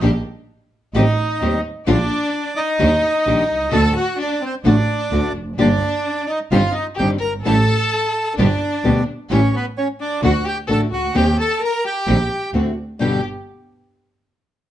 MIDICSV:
0, 0, Header, 1, 6, 480
1, 0, Start_track
1, 0, Key_signature, -2, "minor"
1, 0, Tempo, 463320
1, 17, Time_signature, 4, 2, 24, 8
1, 15232, End_track
2, 0, Start_track
2, 0, Title_t, "Bandoneon"
2, 0, Program_c, 0, 23
2, 999, Note_on_c, 0, 75, 83
2, 1007, Note_on_c, 0, 63, 64
2, 1667, Note_off_c, 0, 75, 0
2, 1671, Note_off_c, 0, 63, 0
2, 1961, Note_on_c, 0, 62, 68
2, 1961, Note_on_c, 0, 74, 85
2, 2629, Note_off_c, 0, 62, 0
2, 2657, Note_on_c, 0, 75, 100
2, 2667, Note_on_c, 0, 63, 74
2, 2691, Note_off_c, 0, 74, 0
2, 3823, Note_off_c, 0, 63, 0
2, 3865, Note_on_c, 0, 81, 98
2, 3869, Note_on_c, 0, 69, 76
2, 3896, Note_off_c, 0, 75, 0
2, 4088, Note_off_c, 0, 69, 0
2, 4109, Note_on_c, 0, 66, 73
2, 4110, Note_off_c, 0, 81, 0
2, 4116, Note_on_c, 0, 78, 91
2, 4329, Note_off_c, 0, 66, 0
2, 4332, Note_off_c, 0, 78, 0
2, 4366, Note_on_c, 0, 74, 88
2, 4372, Note_on_c, 0, 62, 67
2, 4581, Note_off_c, 0, 62, 0
2, 4600, Note_off_c, 0, 74, 0
2, 4612, Note_on_c, 0, 60, 61
2, 4616, Note_on_c, 0, 72, 80
2, 4713, Note_off_c, 0, 60, 0
2, 4716, Note_off_c, 0, 72, 0
2, 4843, Note_on_c, 0, 62, 63
2, 4845, Note_on_c, 0, 74, 80
2, 5517, Note_off_c, 0, 62, 0
2, 5518, Note_off_c, 0, 74, 0
2, 5803, Note_on_c, 0, 74, 80
2, 5808, Note_on_c, 0, 62, 65
2, 6479, Note_off_c, 0, 62, 0
2, 6512, Note_on_c, 0, 75, 75
2, 6525, Note_on_c, 0, 63, 60
2, 6539, Note_off_c, 0, 74, 0
2, 6620, Note_off_c, 0, 75, 0
2, 6630, Note_off_c, 0, 63, 0
2, 6750, Note_on_c, 0, 77, 89
2, 6777, Note_on_c, 0, 65, 71
2, 6975, Note_off_c, 0, 77, 0
2, 6989, Note_off_c, 0, 65, 0
2, 6991, Note_on_c, 0, 75, 74
2, 7017, Note_on_c, 0, 63, 64
2, 7099, Note_off_c, 0, 75, 0
2, 7119, Note_off_c, 0, 63, 0
2, 7233, Note_on_c, 0, 79, 92
2, 7260, Note_on_c, 0, 67, 69
2, 7341, Note_off_c, 0, 79, 0
2, 7362, Note_off_c, 0, 67, 0
2, 7467, Note_on_c, 0, 82, 88
2, 7498, Note_on_c, 0, 70, 69
2, 7576, Note_off_c, 0, 82, 0
2, 7600, Note_off_c, 0, 70, 0
2, 7720, Note_on_c, 0, 81, 95
2, 7748, Note_on_c, 0, 69, 80
2, 8633, Note_off_c, 0, 81, 0
2, 8648, Note_off_c, 0, 69, 0
2, 8690, Note_on_c, 0, 74, 81
2, 8707, Note_on_c, 0, 62, 64
2, 9357, Note_off_c, 0, 74, 0
2, 9366, Note_off_c, 0, 62, 0
2, 9663, Note_on_c, 0, 61, 64
2, 9670, Note_on_c, 0, 73, 84
2, 9870, Note_off_c, 0, 61, 0
2, 9895, Note_off_c, 0, 73, 0
2, 9901, Note_on_c, 0, 59, 59
2, 9905, Note_on_c, 0, 71, 75
2, 10002, Note_off_c, 0, 59, 0
2, 10004, Note_off_c, 0, 71, 0
2, 10129, Note_on_c, 0, 73, 82
2, 10134, Note_on_c, 0, 61, 63
2, 10231, Note_off_c, 0, 73, 0
2, 10236, Note_off_c, 0, 61, 0
2, 10367, Note_on_c, 0, 62, 58
2, 10369, Note_on_c, 0, 74, 81
2, 10580, Note_off_c, 0, 62, 0
2, 10581, Note_off_c, 0, 74, 0
2, 10615, Note_on_c, 0, 78, 94
2, 10625, Note_on_c, 0, 66, 75
2, 10824, Note_off_c, 0, 78, 0
2, 10829, Note_off_c, 0, 66, 0
2, 10857, Note_on_c, 0, 79, 90
2, 10868, Note_on_c, 0, 67, 70
2, 10957, Note_off_c, 0, 79, 0
2, 10966, Note_off_c, 0, 67, 0
2, 11096, Note_on_c, 0, 69, 76
2, 11097, Note_on_c, 0, 81, 93
2, 11196, Note_off_c, 0, 69, 0
2, 11197, Note_off_c, 0, 81, 0
2, 11326, Note_on_c, 0, 78, 90
2, 11333, Note_on_c, 0, 66, 69
2, 11541, Note_off_c, 0, 66, 0
2, 11560, Note_off_c, 0, 78, 0
2, 11572, Note_on_c, 0, 79, 92
2, 11579, Note_on_c, 0, 67, 76
2, 11780, Note_off_c, 0, 79, 0
2, 11783, Note_off_c, 0, 67, 0
2, 11814, Note_on_c, 0, 81, 99
2, 11821, Note_on_c, 0, 69, 70
2, 12024, Note_off_c, 0, 69, 0
2, 12043, Note_off_c, 0, 81, 0
2, 12067, Note_on_c, 0, 82, 98
2, 12076, Note_on_c, 0, 70, 79
2, 12267, Note_off_c, 0, 82, 0
2, 12272, Note_off_c, 0, 70, 0
2, 12290, Note_on_c, 0, 79, 87
2, 12296, Note_on_c, 0, 67, 69
2, 12954, Note_off_c, 0, 79, 0
2, 12958, Note_off_c, 0, 67, 0
2, 13471, Note_on_c, 0, 79, 71
2, 13691, Note_off_c, 0, 79, 0
2, 15232, End_track
3, 0, Start_track
3, 0, Title_t, "Violin"
3, 0, Program_c, 1, 40
3, 996, Note_on_c, 1, 63, 69
3, 1666, Note_off_c, 1, 63, 0
3, 1938, Note_on_c, 1, 62, 71
3, 2617, Note_off_c, 1, 62, 0
3, 2649, Note_on_c, 1, 63, 80
3, 3814, Note_off_c, 1, 63, 0
3, 3859, Note_on_c, 1, 69, 87
3, 4083, Note_off_c, 1, 69, 0
3, 4100, Note_on_c, 1, 66, 81
3, 4324, Note_off_c, 1, 66, 0
3, 4333, Note_on_c, 1, 62, 71
3, 4560, Note_off_c, 1, 62, 0
3, 4571, Note_on_c, 1, 60, 66
3, 4682, Note_off_c, 1, 60, 0
3, 4818, Note_on_c, 1, 62, 68
3, 5504, Note_off_c, 1, 62, 0
3, 5779, Note_on_c, 1, 62, 72
3, 6464, Note_off_c, 1, 62, 0
3, 6497, Note_on_c, 1, 63, 65
3, 6608, Note_off_c, 1, 63, 0
3, 6749, Note_on_c, 1, 65, 76
3, 6955, Note_off_c, 1, 65, 0
3, 6961, Note_on_c, 1, 63, 70
3, 7076, Note_off_c, 1, 63, 0
3, 7196, Note_on_c, 1, 67, 76
3, 7312, Note_off_c, 1, 67, 0
3, 7443, Note_on_c, 1, 70, 78
3, 7557, Note_off_c, 1, 70, 0
3, 7685, Note_on_c, 1, 69, 88
3, 8616, Note_off_c, 1, 69, 0
3, 8670, Note_on_c, 1, 62, 64
3, 9348, Note_off_c, 1, 62, 0
3, 9638, Note_on_c, 1, 61, 70
3, 9857, Note_off_c, 1, 61, 0
3, 9894, Note_on_c, 1, 59, 65
3, 9996, Note_off_c, 1, 59, 0
3, 10129, Note_on_c, 1, 61, 65
3, 10231, Note_off_c, 1, 61, 0
3, 10363, Note_on_c, 1, 62, 69
3, 10578, Note_off_c, 1, 62, 0
3, 10596, Note_on_c, 1, 66, 80
3, 10814, Note_off_c, 1, 66, 0
3, 10824, Note_on_c, 1, 67, 77
3, 10932, Note_off_c, 1, 67, 0
3, 11058, Note_on_c, 1, 69, 78
3, 11167, Note_off_c, 1, 69, 0
3, 11294, Note_on_c, 1, 66, 78
3, 11520, Note_off_c, 1, 66, 0
3, 11557, Note_on_c, 1, 67, 80
3, 11772, Note_off_c, 1, 67, 0
3, 11803, Note_on_c, 1, 69, 80
3, 12014, Note_off_c, 1, 69, 0
3, 12019, Note_on_c, 1, 70, 81
3, 12241, Note_off_c, 1, 70, 0
3, 12275, Note_on_c, 1, 67, 74
3, 12947, Note_off_c, 1, 67, 0
3, 13476, Note_on_c, 1, 67, 65
3, 13694, Note_off_c, 1, 67, 0
3, 15232, End_track
4, 0, Start_track
4, 0, Title_t, "String section"
4, 0, Program_c, 2, 48
4, 21, Note_on_c, 2, 58, 74
4, 21, Note_on_c, 2, 62, 64
4, 22, Note_on_c, 2, 67, 81
4, 221, Note_off_c, 2, 58, 0
4, 221, Note_off_c, 2, 62, 0
4, 221, Note_off_c, 2, 67, 0
4, 979, Note_on_c, 2, 57, 68
4, 979, Note_on_c, 2, 67, 81
4, 981, Note_on_c, 2, 60, 64
4, 1180, Note_off_c, 2, 57, 0
4, 1180, Note_off_c, 2, 67, 0
4, 1181, Note_off_c, 2, 60, 0
4, 1453, Note_on_c, 2, 57, 50
4, 1453, Note_on_c, 2, 60, 46
4, 1457, Note_on_c, 2, 67, 57
4, 1657, Note_off_c, 2, 57, 0
4, 1657, Note_off_c, 2, 60, 0
4, 1659, Note_off_c, 2, 67, 0
4, 1931, Note_on_c, 2, 58, 81
4, 1934, Note_on_c, 2, 62, 69
4, 1936, Note_on_c, 2, 67, 85
4, 2137, Note_off_c, 2, 58, 0
4, 2138, Note_off_c, 2, 62, 0
4, 2139, Note_off_c, 2, 67, 0
4, 2896, Note_on_c, 2, 62, 75
4, 2901, Note_on_c, 2, 63, 68
4, 2901, Note_on_c, 2, 67, 79
4, 3099, Note_off_c, 2, 62, 0
4, 3102, Note_off_c, 2, 63, 0
4, 3102, Note_off_c, 2, 67, 0
4, 3374, Note_on_c, 2, 62, 50
4, 3377, Note_on_c, 2, 63, 49
4, 3379, Note_on_c, 2, 67, 56
4, 3579, Note_off_c, 2, 62, 0
4, 3581, Note_off_c, 2, 63, 0
4, 3581, Note_off_c, 2, 67, 0
4, 3847, Note_on_c, 2, 62, 71
4, 3849, Note_on_c, 2, 57, 72
4, 3852, Note_on_c, 2, 66, 80
4, 4056, Note_off_c, 2, 62, 0
4, 4057, Note_off_c, 2, 57, 0
4, 4058, Note_off_c, 2, 66, 0
4, 4808, Note_on_c, 2, 57, 69
4, 4811, Note_on_c, 2, 62, 60
4, 4811, Note_on_c, 2, 66, 72
4, 5018, Note_off_c, 2, 57, 0
4, 5019, Note_off_c, 2, 62, 0
4, 5019, Note_off_c, 2, 66, 0
4, 5300, Note_on_c, 2, 57, 49
4, 5300, Note_on_c, 2, 62, 43
4, 5304, Note_on_c, 2, 66, 53
4, 5506, Note_off_c, 2, 57, 0
4, 5506, Note_off_c, 2, 62, 0
4, 5508, Note_off_c, 2, 66, 0
4, 5785, Note_on_c, 2, 58, 70
4, 5787, Note_on_c, 2, 67, 77
4, 5788, Note_on_c, 2, 65, 68
4, 5989, Note_off_c, 2, 58, 0
4, 5990, Note_off_c, 2, 67, 0
4, 5991, Note_off_c, 2, 65, 0
4, 6750, Note_on_c, 2, 60, 70
4, 6752, Note_on_c, 2, 62, 64
4, 6756, Note_on_c, 2, 63, 75
4, 6953, Note_off_c, 2, 60, 0
4, 6954, Note_off_c, 2, 62, 0
4, 6956, Note_off_c, 2, 63, 0
4, 7236, Note_on_c, 2, 60, 49
4, 7236, Note_on_c, 2, 62, 45
4, 7237, Note_on_c, 2, 63, 51
4, 7435, Note_off_c, 2, 60, 0
4, 7436, Note_off_c, 2, 62, 0
4, 7436, Note_off_c, 2, 63, 0
4, 7714, Note_on_c, 2, 57, 73
4, 7718, Note_on_c, 2, 61, 67
4, 7724, Note_on_c, 2, 67, 85
4, 7915, Note_off_c, 2, 57, 0
4, 7917, Note_off_c, 2, 61, 0
4, 7920, Note_off_c, 2, 67, 0
4, 8677, Note_on_c, 2, 59, 69
4, 8681, Note_on_c, 2, 62, 63
4, 8685, Note_on_c, 2, 67, 77
4, 8875, Note_off_c, 2, 59, 0
4, 8877, Note_off_c, 2, 62, 0
4, 8879, Note_off_c, 2, 67, 0
4, 9158, Note_on_c, 2, 59, 52
4, 9162, Note_on_c, 2, 62, 45
4, 9165, Note_on_c, 2, 67, 56
4, 9355, Note_off_c, 2, 59, 0
4, 9357, Note_off_c, 2, 62, 0
4, 9359, Note_off_c, 2, 67, 0
4, 9631, Note_on_c, 2, 57, 75
4, 9632, Note_on_c, 2, 67, 81
4, 9633, Note_on_c, 2, 61, 69
4, 9831, Note_off_c, 2, 57, 0
4, 9831, Note_off_c, 2, 67, 0
4, 9832, Note_off_c, 2, 61, 0
4, 10587, Note_on_c, 2, 57, 70
4, 10588, Note_on_c, 2, 62, 64
4, 10591, Note_on_c, 2, 66, 79
4, 10787, Note_off_c, 2, 57, 0
4, 10788, Note_off_c, 2, 62, 0
4, 10789, Note_off_c, 2, 66, 0
4, 11068, Note_on_c, 2, 57, 50
4, 11071, Note_on_c, 2, 62, 47
4, 11072, Note_on_c, 2, 66, 55
4, 11267, Note_off_c, 2, 57, 0
4, 11268, Note_off_c, 2, 62, 0
4, 11269, Note_off_c, 2, 66, 0
4, 11542, Note_on_c, 2, 60, 76
4, 11546, Note_on_c, 2, 63, 73
4, 11548, Note_on_c, 2, 67, 84
4, 11742, Note_off_c, 2, 60, 0
4, 11744, Note_off_c, 2, 63, 0
4, 11745, Note_off_c, 2, 67, 0
4, 12502, Note_on_c, 2, 60, 64
4, 12504, Note_on_c, 2, 67, 79
4, 12507, Note_on_c, 2, 63, 62
4, 12702, Note_off_c, 2, 60, 0
4, 12703, Note_off_c, 2, 67, 0
4, 12705, Note_off_c, 2, 63, 0
4, 12986, Note_on_c, 2, 60, 48
4, 12988, Note_on_c, 2, 62, 45
4, 12988, Note_on_c, 2, 66, 54
4, 13186, Note_off_c, 2, 60, 0
4, 13187, Note_off_c, 2, 62, 0
4, 13187, Note_off_c, 2, 66, 0
4, 13464, Note_on_c, 2, 62, 47
4, 13467, Note_on_c, 2, 67, 55
4, 13468, Note_on_c, 2, 59, 52
4, 13665, Note_off_c, 2, 62, 0
4, 13667, Note_off_c, 2, 59, 0
4, 13667, Note_off_c, 2, 67, 0
4, 15232, End_track
5, 0, Start_track
5, 0, Title_t, "Nylon-string guitar"
5, 0, Program_c, 3, 24
5, 13, Note_on_c, 3, 50, 83
5, 22, Note_on_c, 3, 55, 80
5, 28, Note_on_c, 3, 62, 86
5, 33, Note_on_c, 3, 67, 88
5, 108, Note_off_c, 3, 50, 0
5, 113, Note_off_c, 3, 55, 0
5, 116, Note_off_c, 3, 62, 0
5, 118, Note_off_c, 3, 67, 0
5, 980, Note_on_c, 3, 51, 82
5, 986, Note_on_c, 3, 55, 84
5, 993, Note_on_c, 3, 67, 100
5, 996, Note_on_c, 3, 60, 84
5, 1072, Note_off_c, 3, 51, 0
5, 1075, Note_off_c, 3, 55, 0
5, 1078, Note_off_c, 3, 67, 0
5, 1080, Note_off_c, 3, 60, 0
5, 1465, Note_on_c, 3, 51, 62
5, 1470, Note_on_c, 3, 55, 68
5, 1473, Note_on_c, 3, 60, 66
5, 1476, Note_on_c, 3, 67, 69
5, 1637, Note_off_c, 3, 51, 0
5, 1639, Note_off_c, 3, 55, 0
5, 1641, Note_off_c, 3, 60, 0
5, 1642, Note_off_c, 3, 67, 0
5, 1934, Note_on_c, 3, 50, 83
5, 1944, Note_on_c, 3, 55, 92
5, 1945, Note_on_c, 3, 62, 93
5, 1949, Note_on_c, 3, 65, 98
5, 2029, Note_off_c, 3, 50, 0
5, 2034, Note_off_c, 3, 55, 0
5, 2035, Note_off_c, 3, 62, 0
5, 2036, Note_off_c, 3, 65, 0
5, 2889, Note_on_c, 3, 51, 79
5, 2895, Note_on_c, 3, 62, 99
5, 2896, Note_on_c, 3, 55, 85
5, 2900, Note_on_c, 3, 67, 99
5, 2987, Note_off_c, 3, 51, 0
5, 2990, Note_off_c, 3, 55, 0
5, 2990, Note_off_c, 3, 62, 0
5, 2993, Note_off_c, 3, 67, 0
5, 3373, Note_on_c, 3, 51, 64
5, 3379, Note_on_c, 3, 55, 67
5, 3387, Note_on_c, 3, 62, 70
5, 3392, Note_on_c, 3, 67, 74
5, 3552, Note_off_c, 3, 51, 0
5, 3555, Note_off_c, 3, 55, 0
5, 3559, Note_off_c, 3, 62, 0
5, 3561, Note_off_c, 3, 67, 0
5, 3848, Note_on_c, 3, 50, 83
5, 3849, Note_on_c, 3, 57, 84
5, 3857, Note_on_c, 3, 62, 85
5, 3861, Note_on_c, 3, 66, 96
5, 3948, Note_off_c, 3, 50, 0
5, 3948, Note_off_c, 3, 57, 0
5, 3952, Note_off_c, 3, 62, 0
5, 3954, Note_off_c, 3, 66, 0
5, 4817, Note_on_c, 3, 50, 86
5, 4823, Note_on_c, 3, 57, 89
5, 4830, Note_on_c, 3, 62, 94
5, 4831, Note_on_c, 3, 66, 98
5, 4913, Note_off_c, 3, 50, 0
5, 4916, Note_off_c, 3, 57, 0
5, 4919, Note_off_c, 3, 62, 0
5, 4920, Note_off_c, 3, 66, 0
5, 5299, Note_on_c, 3, 50, 63
5, 5304, Note_on_c, 3, 57, 62
5, 5312, Note_on_c, 3, 62, 62
5, 5315, Note_on_c, 3, 66, 72
5, 5479, Note_off_c, 3, 50, 0
5, 5482, Note_off_c, 3, 57, 0
5, 5486, Note_off_c, 3, 62, 0
5, 5487, Note_off_c, 3, 66, 0
5, 5781, Note_on_c, 3, 50, 81
5, 5787, Note_on_c, 3, 53, 78
5, 5787, Note_on_c, 3, 58, 82
5, 5790, Note_on_c, 3, 67, 90
5, 5792, Note_on_c, 3, 62, 80
5, 5878, Note_off_c, 3, 50, 0
5, 5881, Note_off_c, 3, 53, 0
5, 5881, Note_off_c, 3, 58, 0
5, 5883, Note_off_c, 3, 67, 0
5, 5884, Note_off_c, 3, 62, 0
5, 6751, Note_on_c, 3, 51, 89
5, 6751, Note_on_c, 3, 55, 86
5, 6754, Note_on_c, 3, 60, 92
5, 6758, Note_on_c, 3, 62, 86
5, 6760, Note_on_c, 3, 67, 90
5, 6844, Note_off_c, 3, 51, 0
5, 6845, Note_off_c, 3, 55, 0
5, 6846, Note_off_c, 3, 60, 0
5, 6848, Note_off_c, 3, 62, 0
5, 6849, Note_off_c, 3, 67, 0
5, 7238, Note_on_c, 3, 51, 66
5, 7242, Note_on_c, 3, 55, 67
5, 7245, Note_on_c, 3, 60, 68
5, 7245, Note_on_c, 3, 62, 65
5, 7252, Note_on_c, 3, 67, 71
5, 7411, Note_off_c, 3, 51, 0
5, 7412, Note_off_c, 3, 55, 0
5, 7414, Note_off_c, 3, 60, 0
5, 7414, Note_off_c, 3, 62, 0
5, 7417, Note_off_c, 3, 67, 0
5, 7720, Note_on_c, 3, 52, 78
5, 7725, Note_on_c, 3, 55, 81
5, 7729, Note_on_c, 3, 61, 86
5, 7731, Note_on_c, 3, 64, 89
5, 7809, Note_off_c, 3, 52, 0
5, 7812, Note_off_c, 3, 55, 0
5, 7814, Note_off_c, 3, 61, 0
5, 7815, Note_off_c, 3, 64, 0
5, 8684, Note_on_c, 3, 47, 87
5, 8688, Note_on_c, 3, 50, 88
5, 8692, Note_on_c, 3, 55, 91
5, 8694, Note_on_c, 3, 59, 92
5, 8696, Note_on_c, 3, 67, 89
5, 8770, Note_off_c, 3, 47, 0
5, 8772, Note_off_c, 3, 50, 0
5, 8774, Note_off_c, 3, 55, 0
5, 8775, Note_off_c, 3, 59, 0
5, 8776, Note_off_c, 3, 67, 0
5, 9157, Note_on_c, 3, 47, 70
5, 9160, Note_on_c, 3, 50, 65
5, 9163, Note_on_c, 3, 55, 75
5, 9165, Note_on_c, 3, 59, 68
5, 9169, Note_on_c, 3, 67, 79
5, 9329, Note_off_c, 3, 47, 0
5, 9330, Note_off_c, 3, 50, 0
5, 9332, Note_off_c, 3, 55, 0
5, 9333, Note_off_c, 3, 59, 0
5, 9334, Note_off_c, 3, 67, 0
5, 9640, Note_on_c, 3, 52, 77
5, 9647, Note_on_c, 3, 55, 78
5, 9651, Note_on_c, 3, 61, 92
5, 9655, Note_on_c, 3, 64, 86
5, 9727, Note_off_c, 3, 52, 0
5, 9731, Note_off_c, 3, 55, 0
5, 9733, Note_off_c, 3, 61, 0
5, 9735, Note_off_c, 3, 64, 0
5, 10596, Note_on_c, 3, 50, 92
5, 10603, Note_on_c, 3, 57, 85
5, 10610, Note_on_c, 3, 62, 91
5, 10613, Note_on_c, 3, 66, 101
5, 10683, Note_off_c, 3, 50, 0
5, 10687, Note_off_c, 3, 57, 0
5, 10690, Note_off_c, 3, 62, 0
5, 10692, Note_off_c, 3, 66, 0
5, 11071, Note_on_c, 3, 50, 61
5, 11078, Note_on_c, 3, 57, 64
5, 11079, Note_on_c, 3, 62, 73
5, 11085, Note_on_c, 3, 66, 78
5, 11242, Note_off_c, 3, 50, 0
5, 11246, Note_off_c, 3, 57, 0
5, 11246, Note_off_c, 3, 62, 0
5, 11249, Note_off_c, 3, 66, 0
5, 11547, Note_on_c, 3, 51, 85
5, 11554, Note_on_c, 3, 55, 77
5, 11556, Note_on_c, 3, 60, 87
5, 11560, Note_on_c, 3, 67, 90
5, 11636, Note_off_c, 3, 51, 0
5, 11640, Note_off_c, 3, 55, 0
5, 11641, Note_off_c, 3, 60, 0
5, 11643, Note_off_c, 3, 67, 0
5, 12505, Note_on_c, 3, 51, 83
5, 12510, Note_on_c, 3, 55, 88
5, 12514, Note_on_c, 3, 60, 93
5, 12518, Note_on_c, 3, 67, 90
5, 12595, Note_off_c, 3, 51, 0
5, 12597, Note_off_c, 3, 55, 0
5, 12599, Note_off_c, 3, 60, 0
5, 12601, Note_off_c, 3, 67, 0
5, 12988, Note_on_c, 3, 50, 63
5, 12990, Note_on_c, 3, 57, 60
5, 12992, Note_on_c, 3, 60, 64
5, 13000, Note_on_c, 3, 66, 74
5, 13161, Note_off_c, 3, 50, 0
5, 13162, Note_off_c, 3, 57, 0
5, 13163, Note_off_c, 3, 60, 0
5, 13167, Note_off_c, 3, 66, 0
5, 13460, Note_on_c, 3, 43, 76
5, 13462, Note_on_c, 3, 47, 69
5, 13474, Note_on_c, 3, 50, 76
5, 13475, Note_on_c, 3, 55, 83
5, 13480, Note_on_c, 3, 59, 85
5, 13486, Note_on_c, 3, 67, 82
5, 13654, Note_off_c, 3, 43, 0
5, 13655, Note_off_c, 3, 47, 0
5, 13661, Note_off_c, 3, 50, 0
5, 13662, Note_off_c, 3, 55, 0
5, 13664, Note_off_c, 3, 59, 0
5, 13667, Note_off_c, 3, 67, 0
5, 15232, End_track
6, 0, Start_track
6, 0, Title_t, "Double bass"
6, 0, Program_c, 4, 43
6, 13, Note_on_c, 4, 34, 87
6, 217, Note_off_c, 4, 34, 0
6, 977, Note_on_c, 4, 33, 91
6, 1179, Note_off_c, 4, 33, 0
6, 1469, Note_on_c, 4, 39, 64
6, 1665, Note_off_c, 4, 39, 0
6, 1942, Note_on_c, 4, 34, 92
6, 2142, Note_off_c, 4, 34, 0
6, 2897, Note_on_c, 4, 39, 89
6, 3100, Note_off_c, 4, 39, 0
6, 3387, Note_on_c, 4, 34, 63
6, 3585, Note_off_c, 4, 34, 0
6, 3622, Note_on_c, 4, 36, 55
6, 3847, Note_off_c, 4, 36, 0
6, 3853, Note_on_c, 4, 38, 94
6, 4059, Note_off_c, 4, 38, 0
6, 4816, Note_on_c, 4, 33, 90
6, 5022, Note_off_c, 4, 33, 0
6, 5297, Note_on_c, 4, 38, 63
6, 5505, Note_off_c, 4, 38, 0
6, 5541, Note_on_c, 4, 29, 53
6, 5773, Note_off_c, 4, 29, 0
6, 5779, Note_on_c, 4, 31, 89
6, 5987, Note_off_c, 4, 31, 0
6, 6750, Note_on_c, 4, 31, 82
6, 6953, Note_off_c, 4, 31, 0
6, 7238, Note_on_c, 4, 31, 60
6, 7436, Note_off_c, 4, 31, 0
6, 7483, Note_on_c, 4, 31, 52
6, 7718, Note_off_c, 4, 31, 0
6, 7725, Note_on_c, 4, 33, 87
6, 7920, Note_off_c, 4, 33, 0
6, 8680, Note_on_c, 4, 31, 86
6, 8877, Note_off_c, 4, 31, 0
6, 9160, Note_on_c, 4, 38, 63
6, 9356, Note_off_c, 4, 38, 0
6, 9641, Note_on_c, 4, 33, 94
6, 9836, Note_off_c, 4, 33, 0
6, 10597, Note_on_c, 4, 38, 90
6, 10792, Note_off_c, 4, 38, 0
6, 11068, Note_on_c, 4, 33, 62
6, 11267, Note_off_c, 4, 33, 0
6, 11306, Note_on_c, 4, 37, 56
6, 11536, Note_off_c, 4, 37, 0
6, 11542, Note_on_c, 4, 39, 94
6, 11742, Note_off_c, 4, 39, 0
6, 12507, Note_on_c, 4, 34, 85
6, 12704, Note_off_c, 4, 34, 0
6, 12985, Note_on_c, 4, 38, 60
6, 13185, Note_off_c, 4, 38, 0
6, 13475, Note_on_c, 4, 31, 54
6, 13671, Note_off_c, 4, 31, 0
6, 15232, End_track
0, 0, End_of_file